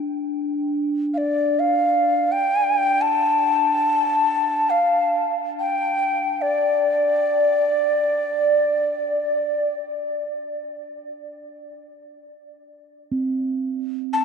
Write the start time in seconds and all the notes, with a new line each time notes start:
Already playing: D4
1.14 F5
1.18 D5
1.59 F5
2.32 G5
3.01 A5
4.70 F5
5.60 G5
6.42 D5
13.12 C4
14.13 A5